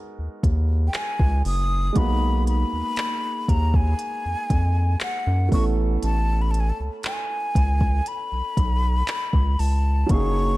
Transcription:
0.00 1.90 G#3 medium
0.00 1.91 B3 medium
0.00 1.92 D#4 medium
0.00 1.93 F#4 medium
0.00 1.94 A#4 loud
0.19 0.29 D#2 soft
0.43 0.89 D#2 medium
0.43 kick loud
0.43 closed hi-hat medium
0.88 0.97 G5 medium
0.94 1.46 G#5 loud
0.94 clap loud
0.94 closed hi-hat medium
1.20 1.43 C#2 medium
1.20 kick medium
1.45 1.91 F#1 loud
1.45 1.99 D#6 loud
1.45 open hi-hat medium
1.93 2.64 B1 loud
1.93 5.46 G#3 medium
1.93 5.47 B3 medium
1.93 5.48 D#4 medium
1.93 kick loud
1.93 closed hi-hat medium
1.97 5.50 A#3 medium
1.97 5.49 F#4 medium
1.97 2.47 B5 loud
2.47 3.51 B5 loud
2.47 closed hi-hat medium
2.73 2.83 D#2 soft
2.96 clap loud
2.96 closed hi-hat medium
3.48 3.94 D#2 medium
3.48 3.77 A#5 loud
3.48 kick medium
3.48 closed hi-hat medium
3.74 5.01 G#5 loud
3.74 kick loud
3.99 closed hi-hat medium
4.25 4.36 F2 soft
4.50 4.96 F2 loud
4.50 kick loud
4.50 closed hi-hat medium
5.01 5.49 F#5 loud
5.01 clap loud
5.01 closed hi-hat medium
5.27 5.50 F#2 medium
5.49 5.98 A1 loud
5.49 9.53 A3 medium
5.49 9.54 B3 medium
5.49 9.55 C#4 medium
5.49 kick loud
5.49 open hi-hat medium
5.53 9.56 E4 medium
5.53 9.57 A4 medium
5.53 5.65 C#6 loud
6.03 6.72 A1 loud
6.03 6.43 A5 loud
6.03 closed hi-hat medium
6.41 6.52 B5 medium
6.51 6.62 A5 medium
6.51 closed hi-hat medium
6.60 6.71 G#5 medium
6.70 6.78 A5 medium
6.80 6.90 C#2 medium
7.03 8.09 G#5 loud
7.03 clap loud
7.03 closed hi-hat medium
7.55 8.01 C#2 medium
7.55 kick loud
7.55 closed hi-hat medium
7.81 kick loud
8.06 9.61 B5 loud
8.06 closed hi-hat medium
8.32 8.42 B1 soft
8.57 9.03 B1 medium
8.57 kick loud
8.57 closed hi-hat medium
9.08 clap loud
9.08 closed hi-hat medium
9.33 9.56 C#2 medium
9.33 kick medium
9.59 10.05 C#2 medium
9.59 10.12 A5 loud
9.59 open hi-hat medium
10.06 10.57 F#1 loud
10.06 10.57 F#3 medium
10.06 10.57 A#3 medium
10.06 10.57 C#4 medium
10.06 kick loud
10.06 closed hi-hat medium
10.10 10.57 D#4 medium
10.10 10.57 G#4 medium
10.10 10.57 C#6 loud

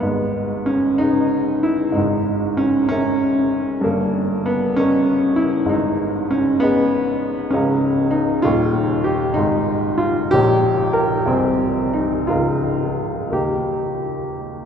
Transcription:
0.00 1.93 G#1 medium
0.00 1.91 G#2 medium
0.00 0.67 B3 medium
0.66 1.00 C#4 loud
0.98 1.65 D#4 loud
0.98 1.93 G#4 medium
0.98 1.94 B4 medium
0.98 1.94 D#5 medium
1.63 1.96 E4 loud
1.92 3.80 G#2 medium
1.92 2.59 D#4 medium
1.97 3.82 G#1 medium
2.57 2.87 C#4 loud
2.89 3.84 C#4 loud
2.89 3.81 A#4 medium
2.89 3.81 E5 medium
2.89 3.81 A#5 medium
3.81 5.66 G2 medium
3.81 4.48 A#3 medium
3.86 5.68 G1 medium
4.46 4.78 B3 loud
4.76 5.40 C#4 loud
4.76 5.68 A#4 medium
4.76 5.68 D#5 medium
4.76 5.69 C#6 medium
5.36 5.70 E4 loud
5.65 7.46 G#1 medium
5.65 7.46 G#2 medium
5.65 6.32 D#4 medium
6.31 6.62 C#4 medium
6.60 7.51 B3 loud
6.60 7.49 G#4 medium
6.60 7.49 D#5 medium
6.60 7.49 B5 medium
7.51 8.42 C#1 medium
7.51 8.42 C#2 medium
7.51 8.13 C#4 loud
7.51 8.41 G#4 soft
7.51 8.41 F5 soft
7.51 8.41 A#5 medium
8.11 8.43 D#4 loud
8.42 9.35 D#1 medium
8.42 9.35 D#2 medium
8.42 9.05 F4 loud
8.42 9.03 G4 medium
8.42 9.34 D#5 medium
8.42 9.34 C#6 medium
9.04 9.37 G4 loud
9.34 10.30 G#1 medium
9.34 10.29 G#2 medium
9.34 9.99 D#4 loud
9.34 10.28 G#4 medium
9.34 10.29 D#5 medium
9.34 10.29 C6 soft
9.98 10.31 F4 loud
10.31 11.26 A#1 medium
10.31 11.26 A#2 medium
10.31 10.95 G4 loud
10.31 11.25 C#5 medium
10.31 11.25 D#5 medium
10.31 11.25 A#5 medium
10.93 11.27 A#4 medium
11.26 12.25 C1 medium
11.26 12.25 C2 medium
11.26 11.95 C4 medium
11.30 12.26 C5 soft
11.30 12.26 D#5 soft
11.30 12.26 G#5 soft
11.93 12.28 D#4 medium
12.27 13.31 C#1 medium
12.27 13.31 C#2 medium
12.27 13.33 F4 medium
12.27 13.30 A#4 soft
12.27 13.30 F5 soft
12.27 13.30 A#5 soft
13.30 14.65 D#2 soft
13.30 14.65 G4 medium
13.30 14.65 A#4 soft
13.30 14.65 D#5 soft
13.30 14.65 A#5 soft

